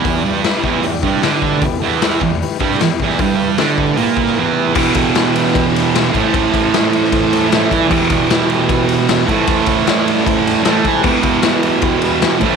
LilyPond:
<<
  \new Staff \with { instrumentName = "Transistor combo organ" } { \time 4/4 \key e \minor \tempo 4 = 153 << { r1 | r1 | r1 | r1 |
r2 r8 a''8 e''4 | r1 | r2. a''4 | r1 | } \\ { <e' g' d''>8 <e' g' b'>8 <e' g' b'>8 <e' g' b'>8 <e' g' d''>8 <e' g' d''>8 <e' g' b'>8 <e' g' b'>8 | <e' g' b'>8 <e' g' a'>8 <e' g' b'>8 <e' g' d''>8 <e' g' b'>8 <e' g' b'>8 <e' g' b'>8 <e' g' d''>8 | <e' g' b'>8 <e' g' b'>8 <e' g' d''>8 <e' g' b'>8 <e' g' b'>8 <e' g' b'>8 <e' g' b'>8 <e' g' b'>8 | <e' g' b'>8 <e' g' a'>8 <e' g' b'>8 <e' g' b'>8 <e' g' b'>8 <e' g' b'>8 <e' g' b'>8 <e' a' c''>8~ |
<e' a' c''>8 <e' a' c''>8 <e' a' c''>8 <e' a' c''>8 <e' a' c''>8 <e' a' c''>8 <e' a' c''>8 <e' a' d''>8 | <e' g' b'>8 <e' g' d''>8 <e' g' b'>8 <e' g' a'>8 <e' g' b'>8 <e' g' b'>8 <e' g' b'>8 <e' a' c''>8~ | <e' a' c''>8 <e' a' c''>8 <e' a' d''>8 <e' a' d''>8 <e' a' c''>8 <e' a' d''>8 <e' a' c''>8 <e' a' c''>8 | <e' g' b'>8 <e' g' b'>8 <e' g' b'>8 <e' g' b'>8 <e' g' b'>8 <e' g' b'>8 <e' g' b'>8 <e' a' c''>8 | } >> }
  \new Staff \with { instrumentName = "Distorted electric guitar" } { \clef bass \time 4/4 \key e \minor <e, e>8 <g, g>4 <e, e>8 e,8 <g, g>8 <d d'>4 | e,8 <e, e>4 e,8 r8 <g, g>8 e,8 <e, e>8 | <g, g>4 <d d'>4 <ais, ais>4 <e, e>4 | <e, b, e>2.~ <e, b, e>8 <a, e a>8~ |
<a, e a>2. <a, e a>8 r8 | <e, b, e>2.~ <e, b, e>8 <a, e a>8~ | <a, e a>2. <a, e a>8 r8 | <e, b, e>2.~ <e, b, e>8 <a, e a>8 | }
  \new DrumStaff \with { instrumentName = "Drums" } \drummode { \time 4/4 <hho bd>4 <hho sn>8 bd8 hho8 bd8 <hho sn>8 bd8 | <hho bd>4 <hho sn>8 bd8 hho8 bd16 sn16 <hho sn>8 bd16 sn16 | <hho bd>4 <hho sn>8 bd8 hho8 bd16 sn16 r4 | <cymc bd>8 <bd cymr>8 <cymr sn>8 cymr16 sn16 <bd cymr>8 <cymr sn>8 <cymr sn>8 <bd cymr>8 |
<bd cymr>8 <bd cymr>8 <cymr sn>8 cymr16 sn16 <bd cymr>8 <cymr sn>8 <cymr sn>8 <bd cymr>8 | <cymc bd>8 <bd cymr>8 <cymr sn>8 cymr8 <bd cymr>8 cymr8 <cymr sn>8 <bd cymr>8 | <bd cymr>8 <bd cymr>8 <cymr sn>8 cymr16 sn16 <bd cymr>8 <cymr sn>8 <cymr sn>8 <bd cymr>8 | <cymc bd>8 <bd cymr>8 <cymr sn>8 cymr8 <bd cymr>8 cymr8 <cymr sn>8 <bd cymr>8 | }
>>